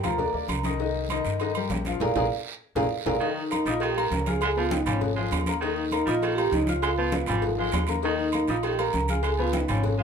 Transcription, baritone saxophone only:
3.20 D#3
3.66 G3
3.81 D#3
4.42 G#3
4.57 F3
4.86 G3
5.16 G#3
5.61 D#3
6.06 G3
6.23 D#3
6.82 G#3
6.98 F3
7.29 G3
7.60 G#3
8.05 D#3
8.48 G3
8.64 D#3
9.23 G#3
9.38 F3
9.68 G3
9.98 G#3

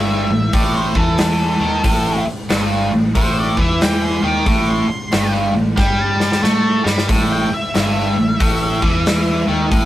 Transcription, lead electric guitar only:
Already playing: E5
0.54 D5
0.77 C5
0.98 A4
3.17 C5
3.38 D5
3.61 E5
3.83 G5
4.05 C6
4.27 D6
4.70 C6
5.79 G5
6.01 A5
7.32 G5
7.54 E5
7.76 E5

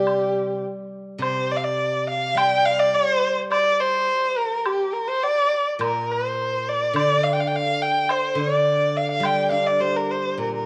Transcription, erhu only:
Already playing: G4
1.21 C5
1.51 D5
1.56 F5
1.64 D5
2.10 F5
2.38 G5
2.65 F5
2.79 D5
2.95 C5
3.52 D5
3.80 C5
4.38 A#4
4.66 G4
4.93 A#4
5.08 C5
5.23 D5
5.82 A#4
6.11 C5
6.69 D5
6.97 D5
7.24 F5
7.33 G5
7.40 F5
7.47 G5
7.56 F5
7.82 G5
8.10 C5
8.39 D5
8.97 F5
9.11 F5
9.25 G5
9.52 F5
9.66 D5
9.81 C5
9.96 A#4
10.11 C5
10.41 A#4
10.56 A#4

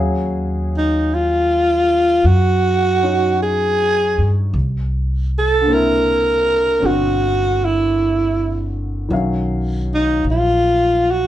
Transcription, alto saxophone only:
0.77 D#4
1.14 F4
2.27 F#4
3.43 G#4
5.38 A4
5.74 A#4
6.86 F#4
7.65 E4
9.94 D#4
10.31 F4
11.11 F#4

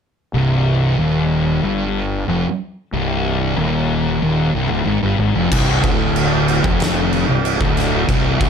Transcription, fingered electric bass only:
0.34 C1
0.99 D#1
1.64 G1
2.28 F1
2.93 C1
3.58 D#1
4.22 D#1
4.55 C1
4.71 D1
4.87 G#1
5.03 G1
5.19 G#1
5.35 F1
5.52 C1
5.84 D1
6.64 F1
7.29 C1
7.61 D1
8.08 C1
8.41 D1

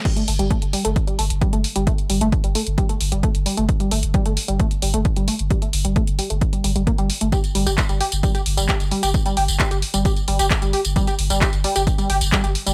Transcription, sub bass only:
0.28 G1
0.39 G1
0.62 G1
0.85 G1
1.19 G1
1.30 G1
1.53 G1
1.76 G1
2.10 G1
2.21 G1
2.44 G1
2.66 G1
3.01 G1
3.12 G1
3.35 G1
3.57 G1
3.91 G1
4.03 G1
4.26 G1
4.48 G1
4.82 G1
4.94 G1
5.17 G1
5.39 G1
5.73 G1
5.85 G1
6.08 G1
6.30 G1
6.64 G1
6.76 G1
6.98 G1
7.21 G1
7.55 G1
7.67 G1
7.89 G1
8.12 G1
8.46 G1
8.58 G1
8.80 G1
9.03 G1
9.37 G1
9.48 G1
9.71 G1
9.94 G1
10.28 G1
10.39 G1
10.62 G1
10.85 G1
11.19 G1
11.30 G1
11.53 G1
11.76 G1
12.10 G1
12.21 G1
12.44 G1
12.66 G1

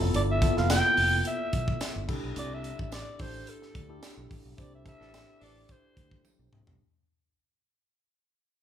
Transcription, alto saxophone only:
0.15 D5
0.31 E5
0.58 F5
0.71 G5
1.27 E5
2.38 D5
2.54 E5
2.82 E5
2.94 D5
3.21 C5
3.49 A4
4.56 D5 E5
4.75 E5
4.88 E5
5.43 D5
5.72 C5

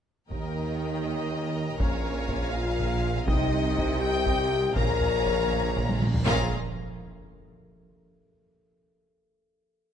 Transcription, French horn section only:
0.31 A#3
1.05 D#4
1.79 C#4
2.52 F4
3.27 D#4
3.99 G4
4.77 A#4
6.26 A#4

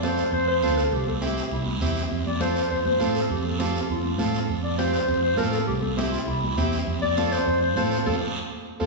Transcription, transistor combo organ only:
0.02 C4 F4 A4
0.62 C4 F4 A4
1.21 C4 E4 G4
1.81 C4 E4 G4
2.40 C4 F4 A4
3.00 C4 F4 A4
3.59 C4 F4 A4
4.18 C4 F4 A4
4.78 C4 F4 G4
5.37 C4 F4 A4
5.97 C4 E4 G4
6.57 C4 E4 G4
7.17 C4 F4 A4
7.77 C4 F4 A4
8.06 C4 F4 A4
8.80 C4 F4 A4

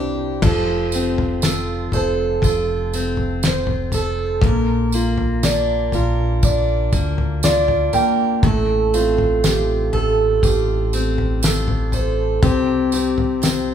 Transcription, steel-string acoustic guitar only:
Already playing: E3 G3 C4 D4 G4
0.43 F3 A4
0.93 C4
1.43 F4
1.93 A4
2.43 F4
2.94 C4
3.44 F4
3.94 A4
4.43 A#2 A#4
4.94 A#3
5.44 D4
5.94 A#4
6.43 D4
6.93 A#3
7.43 D4
7.93 A#4
8.43 A2 A4
8.94 C4
9.44 F4
9.93 A4
10.43 F4
10.94 C4
11.43 F4
11.94 A4
12.43 C3 G4
12.93 C4
13.42 F4

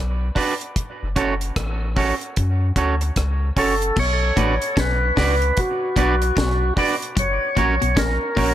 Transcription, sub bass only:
Already playing: B1
1.03 F#1
1.17 F#1
1.57 A1
2.38 F#2
2.77 D2
3.17 C#2
3.57 F#1
3.97 B1
4.37 A1
4.78 B1
5.18 C#2
5.97 B1
6.37 B1
7.18 F#1
7.58 A#1
7.83 B1
7.97 A#1
8.38 A#1

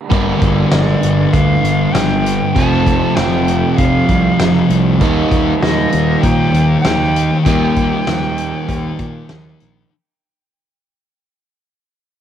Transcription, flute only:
0.72 D5
1.33 F5
1.93 G5
2.54 A5
3.16 G5
3.77 F5
5.60 D#5
6.21 G5
6.81 G5
7.42 G5

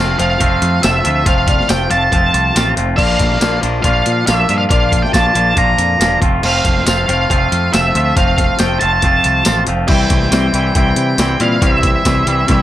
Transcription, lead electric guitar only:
Already playing: F5
0.19 F5
0.83 E5
1.27 F5
1.48 F5
1.69 G5
1.91 A5
2.96 F5
3.82 F5
4.26 E5
4.58 F5
4.69 F5
5.02 G5
5.13 A5
5.58 A#5
6.46 F5
6.87 F5
7.10 F5
7.73 E5
8.17 F5
8.59 G5
8.79 A5
9.88 G5
10.34 G5
10.77 G5
11.41 F5
11.63 E5

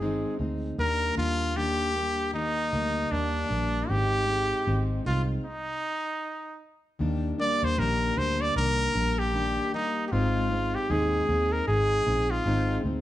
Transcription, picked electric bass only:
Already playing: G1
0.40 D2
0.79 D#2
1.17 D#2
2.73 D2
3.12 D#2
3.51 A#1
3.89 G#1
4.67 G#1
5.06 C2
7.01 D#2
7.63 D#2
7.78 A#1
8.17 D2
8.56 C2
8.95 A#1
10.13 G#1
10.90 D#2
11.29 D#2
11.68 G#1
12.07 A#1
12.46 G#1
12.84 D2

